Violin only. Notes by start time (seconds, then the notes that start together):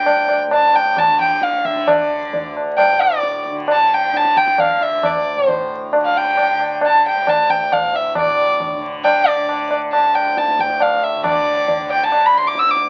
Already playing: G5
0.54 A5
0.75 G5
0.98 A5
1.21 G5
1.43 F5
1.65 E5
1.87 D5
2.78 G5
3.01 D5
3.72 A5
3.86 A5
3.94 G5
4.16 A5
4.37 G5
4.60 F5
4.83 E5
5.05 D5
5.48 C5
6.05 F5
6.17 G5
6.86 A5
7.08 G5
7.29 A5
7.50 G5
7.73 F5
7.95 E5
8.17 D5
9.05 G5
9.27 D5
9.93 A5
10.15 G5
10.38 A5
10.60 G5
10.82 F5
11.04 E5
11.25 D5
11.92 G5
12.03 A5
12.26 B5
12.37 C6
12.47 D6
12.59 E6
12.70 D6